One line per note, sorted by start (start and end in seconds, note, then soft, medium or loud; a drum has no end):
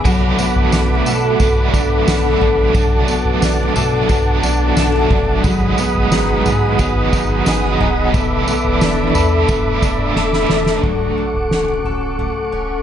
0.00 0.38 B3 medium
0.00 0.72 D4 medium
0.00 0.12 G#4 medium
0.04 0.35 B1 loud
0.04 1.38 B2 medium
0.04 2.74 F#3 medium
0.04 1.40 F#3 medium
0.04 1.40 A3 loud
0.04 5.40 A4 medium
0.04 8.10 F#5 medium
0.04 2.72 B5 medium
0.04 5.40 D6 medium
0.04 kick loud
0.04 floor tom loud
0.04 crash loud
0.04 tambourine medium
0.10 1.41 D4 medium
0.39 1.40 B3 medium
0.39 tambourine medium
0.56 0.71 B1 medium
0.56 floor tom medium
0.72 1.02 B1 medium
0.72 1.73 D4 medium
0.72 snare loud
0.72 tambourine medium
1.06 1.36 B2 loud
1.06 2.07 A4 medium
1.06 tambourine medium
1.40 1.70 B1 loud
1.40 2.05 B2 medium
1.40 2.07 F#3 medium
1.40 2.07 A3 medium
1.40 3.08 B3 medium
1.40 2.08 D4 medium
1.40 kick medium
1.40 floor tom medium
1.40 tambourine medium
1.74 2.03 B1 loud
1.74 2.40 D4 medium
1.74 kick loud
1.74 tambourine medium
2.06 2.37 B1 loud
2.06 2.72 B2 medium
2.06 2.74 F#3 medium
2.06 2.74 A3 medium
2.06 2.75 D4 medium
2.06 3.75 A4 medium
2.06 snare loud
2.06 tambourine medium
2.41 2.71 A1 medium
2.41 3.41 D4 medium
2.41 floor tom medium
2.58 floor tom medium
2.73 3.04 B1 loud
2.73 3.75 B2 medium
2.73 3.78 F#3 medium
2.73 5.44 F#3 medium
2.73 3.75 A3 medium
2.73 3.74 D4 medium
2.73 5.42 A5 medium
2.73 kick loud
2.73 floor tom loud
2.73 tambourine medium
3.08 4.09 B3 medium
3.08 tambourine medium
3.25 3.40 B1 medium
3.25 floor tom medium
3.42 3.72 B1 medium
3.42 4.42 D4 medium
3.42 snare loud
3.42 tambourine medium
3.75 4.05 B2 loud
3.75 4.09 F#3 soft
3.75 4.10 A3 soft
3.75 4.09 D4 medium
3.75 4.76 A4 medium
3.75 floor tom medium
3.75 tambourine medium
4.08 4.39 B1 loud
4.08 4.75 B2 medium
4.08 4.77 F#3 medium
4.08 4.77 A3 medium
4.08 5.78 B3 medium
4.08 4.78 D4 medium
4.08 kick medium
4.08 floor tom medium
4.08 tambourine medium
4.43 4.73 B1 loud
4.43 5.09 D4 medium
4.43 tambourine medium
4.76 5.07 B1 loud
4.76 5.44 B2 medium
4.76 5.45 F#3 medium
4.76 5.45 A3 medium
4.76 5.46 D4 medium
4.76 5.51 A4 medium
4.76 snare loud
4.76 tambourine medium
5.11 5.40 F#1 medium
5.11 5.51 D4 medium
5.11 kick medium
5.11 floor tom medium
5.27 floor tom soft
5.43 5.74 G#1 medium
5.43 6.78 G#2 medium
5.43 6.77 D#3 medium
5.43 8.14 F#3 medium
5.43 6.78 F#3 medium
5.43 6.80 B3 medium
5.43 8.11 G#4 medium
5.43 10.80 B5 medium
5.43 8.11 D#6 medium
5.43 kick loud
5.43 floor tom loud
5.43 tambourine medium
5.48 6.80 D#4 medium
5.78 6.79 B3 medium
5.78 tambourine medium
5.95 6.10 G#1 medium
5.95 floor tom medium
6.12 6.41 G#1 medium
6.12 7.12 D#4 medium
6.12 snare loud
6.12 tambourine medium
6.46 6.75 G#2 loud
6.46 7.46 G#4 medium
6.46 floor tom medium
6.46 tambourine medium
6.79 7.09 G#1 loud
6.79 7.44 D#3 medium
6.79 7.46 F#3 medium
6.79 8.14 B3 medium
6.79 7.48 B3 medium
6.79 7.47 D#4 medium
6.79 kick medium
6.79 floor tom medium
6.79 tambourine medium
7.13 7.43 G#1 loud
7.13 7.79 D#4 medium
7.13 kick loud
7.13 tambourine medium
7.46 7.77 G#1 loud
7.46 8.13 D#3 medium
7.46 8.14 F#3 medium
7.46 8.14 B3 medium
7.46 8.15 D#4 medium
7.46 8.21 G#4 medium
7.46 snare loud
7.46 tambourine medium
7.80 8.10 D1 medium
7.80 8.21 D#4 medium
7.80 floor tom medium
7.97 floor tom medium
8.14 8.44 E1 loud
8.14 9.15 E3 medium
8.14 9.17 A3 medium
8.14 8.47 B3 medium
8.14 9.17 D4 medium
8.14 9.16 A4 medium
8.14 10.82 A4 medium
8.14 9.13 B4 loud
8.14 10.82 E5 medium
8.14 10.81 D6 medium
8.14 kick loud
8.14 floor tom loud
8.14 tambourine medium
8.48 9.48 B3 medium
8.48 tambourine medium
8.65 8.80 E1 medium
8.65 floor tom medium
8.81 9.12 E1 medium
8.81 9.82 D4 medium
8.81 snare loud
8.81 tambourine medium
9.14 9.45 E2 loud
9.14 9.48 D4 soft
9.14 10.16 A4 medium
9.14 9.49 A4 soft
9.14 9.49 B4 medium
9.14 floor tom medium
9.14 tambourine medium
9.49 9.79 E1 loud
9.49 10.16 A3 medium
9.49 10.91 B3 medium
9.49 10.17 D4 medium
9.49 10.18 A4 medium
9.49 10.18 B4 medium
9.49 kick medium
9.49 floor tom medium
9.49 tambourine medium
9.82 10.12 E1 loud
9.82 10.50 D4 medium
9.82 kick loud
9.82 tambourine medium
10.16 10.46 E1 loud
10.16 11.35 A3 medium
10.16 11.35 D4 medium
10.16 11.85 A4 medium
10.16 11.35 A4 medium
10.16 10.85 B4 medium
10.16 snare medium
10.33 snare medium
10.49 10.80 E1 medium
10.49 11.51 D4 medium
10.49 snare loud
10.66 snare medium
10.83 11.13 D1 medium
10.83 12.82 F#3 medium
10.83 12.82 A4 medium
10.83 12.82 F#5 soft
10.83 12.82 C#6 medium
10.83 12.82 D6 medium
10.83 kick medium
10.83 floor tom medium
11.18 12.18 A3 medium
11.34 11.49 D1 medium
11.34 floor tom medium
11.51 11.81 D1 medium
11.51 12.51 C#4 medium
11.51 snare loud
11.85 12.30 D1 medium
11.85 12.82 A4 medium
11.85 floor tom medium
12.19 12.82 A3 medium
12.19 floor tom medium
12.52 12.82 D1 medium
12.52 12.82 C#4 medium